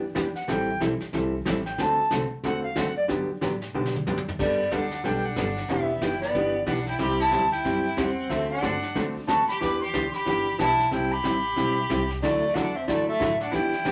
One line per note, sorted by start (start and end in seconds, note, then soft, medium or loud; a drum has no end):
0.00 0.14 F#2 medium
0.15 0.47 E2 medium
0.15 0.26 E3 medium
0.15 0.26 B3 medium
0.15 0.26 D4 medium
0.15 0.27 G4 medium
0.15 kick soft
0.15 snare medium
0.15 hi-hat pedal medium
0.35 0.50 F#5 loud
0.35 snare soft
0.48 0.80 A1 medium
0.48 0.68 E3 medium
0.48 0.69 G3 medium
0.48 0.69 C4 medium
0.48 0.69 E4 medium
0.48 0.69 A4 medium
0.48 0.81 G5 medium
0.48 brush sweep medium
0.48 kick soft
0.48 snare medium
0.80 0.99 B1 medium
0.80 0.91 E3 medium
0.80 0.91 G3 medium
0.80 0.92 C4 medium
0.80 0.92 E4 medium
0.80 0.92 A4 medium
0.80 kick soft
0.80 snare medium
0.80 hi-hat pedal medium
1.00 snare soft
1.13 1.44 C2 medium
1.13 1.33 E3 medium
1.13 1.34 G3 medium
1.13 1.34 C4 medium
1.13 1.34 E4 medium
1.13 1.34 A4 medium
1.13 brush sweep soft
1.13 kick soft
1.13 snare medium
1.45 1.77 A1 loud
1.45 1.56 E3 medium
1.45 1.56 G3 medium
1.45 1.57 C4 medium
1.45 1.57 E4 medium
1.45 1.57 A4 medium
1.45 kick soft
1.45 snare medium
1.45 hi-hat pedal medium
1.65 1.82 G5 medium
1.65 snare soft
1.78 1.97 D2 medium
1.78 1.99 D3 medium
1.78 1.99 A3 medium
1.78 1.99 C4 medium
1.78 1.99 F#4 medium
1.78 1.99 A4 medium
1.78 2.12 A5 medium
1.78 brush sweep medium
1.78 kick soft
1.78 snare medium
1.98 muted upright bass stroke soft
2.11 2.29 C2 loud
2.11 2.22 D3 medium
2.11 2.22 A3 medium
2.11 2.22 C4 medium
2.11 2.22 F#4 medium
2.11 2.23 A4 medium
2.11 kick soft
2.11 snare medium
2.11 hi-hat pedal medium
2.31 muted upright bass stroke soft
2.43 2.75 E2 medium
2.43 2.64 D3 medium
2.43 2.64 A3 medium
2.43 2.64 C4 medium
2.43 2.65 F#4 medium
2.43 2.65 A4 medium
2.43 2.62 F#5 loud
2.43 brush sweep soft
2.43 kick soft
2.43 snare soft
2.63 2.80 F5 medium
2.76 3.08 F#2 medium
2.76 2.87 D3 medium
2.76 2.87 A3 medium
2.76 2.87 C4 medium
2.76 2.87 F#4 medium
2.76 2.88 A4 medium
2.76 2.96 F#5 loud
2.76 kick soft
2.76 snare medium
2.76 hi-hat pedal medium
2.96 3.04 D5 loud
3.08 3.27 G2 loud
3.08 3.29 D3 medium
3.08 3.29 F#3 medium
3.08 3.29 B3 medium
3.08 3.29 D4 medium
3.08 3.29 G4 medium
3.08 brush sweep medium
3.08 kick soft
3.08 snare soft
3.29 muted upright bass stroke soft
3.41 3.73 A2 medium
3.41 3.52 D3 medium
3.41 3.52 F#3 medium
3.41 3.52 B3 medium
3.41 3.52 D4 medium
3.41 3.53 G4 medium
3.41 kick soft
3.41 snare medium
3.41 hi-hat pedal medium
3.62 snare soft
3.74 4.05 B2 medium
3.74 3.94 D3 medium
3.74 3.95 F#3 medium
3.74 3.95 B3 medium
3.74 3.95 D4 medium
3.74 3.95 G4 medium
3.86 snare medium
3.96 mid tom medium
4.06 4.38 F#2 loud
4.06 4.17 D3 medium
4.06 4.18 F#3 medium
4.06 4.18 B3 medium
4.06 4.18 D4 medium
4.06 4.18 G4 medium
4.06 hi-hat pedal medium
4.06 high tom medium
4.18 high tom medium
4.28 floor tom medium
4.39 4.70 G2 medium
4.39 4.59 G3 medium
4.39 4.60 B3 medium
4.39 4.76 B3 medium
4.39 4.60 D4 medium
4.39 4.60 A4 medium
4.39 4.73 D5 medium
4.39 brush sweep soft
4.39 kick medium
4.39 snare soft
4.39 crash medium
4.71 5.03 D2 medium
4.71 4.82 G3 medium
4.71 4.82 B3 medium
4.71 4.83 D4 medium
4.71 5.06 D4 medium
4.71 4.83 A4 medium
4.71 5.06 F#5 medium
4.71 kick soft
4.71 snare medium
4.71 hi-hat pedal soft
4.91 snare soft
5.04 5.36 B1 medium
5.04 5.24 G3 medium
5.04 5.25 B3 medium
5.04 5.25 D4 medium
5.04 5.25 A4 medium
5.04 5.26 G5 medium
5.04 brush sweep soft
5.04 kick soft
5.04 snare soft
5.25 5.70 D4 medium
5.25 5.72 F#5 medium
5.36 5.68 G1 loud
5.36 5.47 G3 medium
5.36 5.48 B3 medium
5.36 5.48 D4 medium
5.36 5.48 A4 medium
5.36 kick soft
5.36 snare medium
5.36 hi-hat pedal medium
5.57 snare soft
5.69 6.01 E1 medium
5.69 5.90 E3 medium
5.69 6.03 B3 medium
5.69 5.90 B3 medium
5.69 5.90 D4 medium
5.69 5.91 G4 medium
5.69 6.03 E5 loud
5.69 brush sweep soft
5.69 kick soft
5.69 snare soft
6.01 6.33 F#1 medium
6.01 6.12 E3 medium
6.01 6.13 B3 medium
6.01 6.13 D4 medium
6.01 6.21 E4 medium
6.01 6.13 G4 medium
6.01 6.20 G5 medium
6.01 kick soft
6.01 snare medium
6.01 hi-hat pedal medium
6.20 6.64 B3 medium
6.20 6.63 D5 medium
6.20 snare soft
6.34 6.66 G1 medium
6.34 6.55 E3 medium
6.34 6.55 B3 medium
6.34 6.55 D4 medium
6.34 6.56 G4 medium
6.34 brush sweep medium
6.34 kick soft
6.34 snare soft
6.66 6.98 B1 loud
6.66 6.78 E3 medium
6.66 6.78 B3 medium
6.66 6.78 D4 medium
6.66 6.86 D4 medium
6.66 6.78 G4 medium
6.66 6.85 F#5 medium
6.66 kick soft
6.66 snare medium
6.66 hi-hat pedal medium
6.86 7.00 E4 medium
6.86 6.99 G5 medium
6.86 snare soft
6.99 7.31 C2 loud
6.99 7.20 C3 medium
6.99 7.20 G3 medium
6.99 7.20 C4 medium
6.99 7.20 E4 medium
6.99 7.20 G4 medium
6.99 7.19 G4 medium
6.99 7.19 B5 loud
6.99 brush sweep soft
6.99 kick soft
6.99 snare soft
7.19 7.50 E4 medium
7.19 7.51 A5 loud
7.31 7.64 D2 medium
7.31 7.43 C3 medium
7.31 7.43 G3 medium
7.31 7.43 C4 medium
7.31 7.44 E4 medium
7.31 7.44 G4 medium
7.31 kick soft
7.31 snare medium
7.31 hi-hat pedal medium
7.52 7.99 E4 medium
7.52 7.99 G5 medium
7.52 snare soft
7.64 7.96 F#2 medium
7.64 7.85 C3 medium
7.64 7.85 G3 medium
7.64 7.85 C4 medium
7.64 7.86 E4 medium
7.64 7.86 G4 medium
7.64 brush sweep soft
7.64 kick soft
7.64 snare soft
7.97 8.29 E2 loud
7.97 8.08 C3 medium
7.97 8.08 G3 medium
7.97 8.30 C4 medium
7.97 8.09 C4 medium
7.97 8.09 E4 medium
7.97 8.09 G4 medium
7.97 8.32 F#5 loud
7.97 kick soft
7.97 snare medium
7.97 hi-hat pedal medium
8.30 8.62 D2 medium
8.30 8.50 D3 medium
8.30 8.51 A3 medium
8.30 8.50 C4 medium
8.30 8.51 C4 medium
8.30 8.51 F#4 medium
8.30 8.51 A4 medium
8.30 8.49 E5 loud
8.30 brush sweep soft
8.30 kick soft
8.30 snare soft
8.50 9.00 D4 medium
8.50 8.99 F#5 loud
8.62 8.94 G2 medium
8.62 8.74 D3 medium
8.62 8.74 A3 medium
8.62 8.74 C4 medium
8.62 8.74 F#4 medium
8.62 8.74 A4 medium
8.62 kick soft
8.62 snare medium
8.62 hi-hat pedal medium
8.83 snare soft
8.95 9.14 F#2 medium
8.95 9.16 D3 medium
8.95 9.16 A3 medium
8.95 9.16 C4 medium
8.95 9.16 F#4 medium
8.95 9.17 A4 medium
8.95 brush sweep soft
8.95 kick soft
8.95 snare soft
9.16 muted upright bass stroke soft
9.27 9.47 D2 medium
9.27 9.39 D3 medium
9.27 9.39 A3 medium
9.27 9.39 C4 medium
9.27 9.39 F#4 medium
9.27 9.48 F#4 medium
9.27 9.40 A4 medium
9.27 9.46 A5 loud
9.27 kick soft
9.27 snare medium
9.27 hi-hat pedal medium
9.47 9.60 G4 medium
9.47 9.60 B5 loud
9.47 muted upright bass stroke soft
9.47 snare soft
9.60 9.93 E2 medium
9.60 9.81 E3 medium
9.60 9.81 B3 medium
9.60 9.82 D4 medium
9.60 9.82 G4 medium
9.60 9.80 B4 medium
9.60 9.79 D6 loud
9.60 brush sweep medium
9.60 kick soft
9.60 snare soft
9.80 10.12 G4 medium
9.80 10.11 C6 loud
9.93 10.12 D2 loud
9.93 10.05 E3 medium
9.93 10.05 B3 medium
9.93 10.05 D4 medium
9.93 10.05 G4 medium
9.93 kick soft
9.93 snare medium
9.93 hi-hat pedal soft
10.13 10.56 G4 medium
10.13 10.56 B5 loud
10.13 muted upright bass stroke soft
10.13 snare soft
10.26 10.58 G1 medium
10.26 10.46 E3 medium
10.26 10.47 B3 medium
10.26 10.47 D4 medium
10.26 10.47 G4 medium
10.26 brush sweep medium
10.26 kick soft
10.26 snare soft
10.58 10.91 B1 medium
10.58 10.70 E3 medium
10.58 10.70 B3 medium
10.58 10.70 D4 medium
10.58 10.90 E4 medium
10.58 10.70 G4 medium
10.58 10.89 A5 loud
10.58 kick soft
10.58 snare medium
10.58 hi-hat pedal medium
10.79 snare soft
10.91 11.23 C2 medium
10.91 11.12 C3 medium
10.91 11.12 G3 medium
10.91 11.12 C4 medium
10.91 11.12 E4 medium
10.91 11.14 E4 medium
10.91 11.12 G4 medium
10.91 11.13 G5 loud
10.91 brush sweep soft
10.91 kick soft
10.91 snare soft
11.11 12.10 G4 medium
11.11 12.09 B5 loud
11.23 11.56 A1 medium
11.23 11.35 C3 medium
11.23 11.35 G3 medium
11.23 11.35 C4 medium
11.23 11.35 E4 medium
11.23 11.35 G4 medium
11.23 kick soft
11.23 snare medium
11.23 hi-hat pedal medium
11.56 11.89 B1 medium
11.56 11.77 C3 medium
11.56 11.77 G3 medium
11.56 11.78 C4 medium
11.56 11.78 E4 medium
11.56 11.78 G4 medium
11.56 brush sweep medium
11.56 kick soft
11.56 snare soft
11.90 12.21 C2 loud
11.90 12.01 C3 medium
11.90 12.01 G3 medium
11.90 12.01 C4 medium
11.90 12.01 E4 medium
11.90 12.01 G4 medium
11.90 kick soft
11.90 snare medium
11.90 hi-hat pedal medium
12.10 snare soft
12.22 12.54 D2 medium
12.22 12.43 D3 medium
12.22 12.43 F#3 medium
12.22 12.58 A3 medium
12.22 12.43 A3 medium
12.22 12.43 E4 medium
12.22 12.44 F#4 medium
12.22 12.55 D5 loud
12.22 brush sweep soft
12.22 kick soft
12.22 snare soft
12.54 12.87 E2 loud
12.54 12.66 D3 medium
12.54 12.66 F#3 medium
12.54 12.66 A3 medium
12.54 12.78 D4 medium
12.54 12.67 E4 medium
12.54 12.67 F#4 medium
12.54 12.77 F#5 medium
12.54 kick soft
12.54 snare medium
12.54 hi-hat pedal soft
12.75 12.88 C4 medium
12.75 12.86 E5 medium
12.87 13.19 F#2 medium
12.87 13.08 D3 medium
12.87 13.08 F#3 medium
12.87 13.08 A3 medium
12.87 13.07 A3 medium
12.87 13.09 E4 medium
12.87 13.09 F#4 medium
12.87 13.06 D5 medium
12.87 brush sweep soft
12.87 kick soft
12.87 snare soft
13.08 13.38 A3 medium
13.08 13.38 E5 medium
13.20 13.52 A2 loud
13.20 13.31 D3 medium
13.20 13.31 F#3 medium
13.20 13.31 A3 medium
13.20 13.32 E4 medium
13.20 13.32 F#4 medium
13.20 kick soft
13.20 snare medium
13.20 hi-hat pedal medium
13.40 13.53 D4 medium
13.40 13.56 F#5 medium
13.40 snare soft
13.51 13.85 E2 medium
13.51 13.73 E3 medium
13.51 13.73 B3 medium
13.51 13.73 D4 medium
13.51 13.92 E4 medium
13.51 13.74 G4 medium
13.51 13.92 G5 medium
13.51 brush sweep soft
13.51 kick soft
13.51 snare soft
13.73 snare soft
13.85 13.92 F#2 medium
13.85 13.92 E3 medium
13.85 13.92 B3 medium
13.85 13.92 D4 medium
13.85 13.92 G4 medium
13.85 kick soft
13.85 snare medium
13.85 hi-hat pedal medium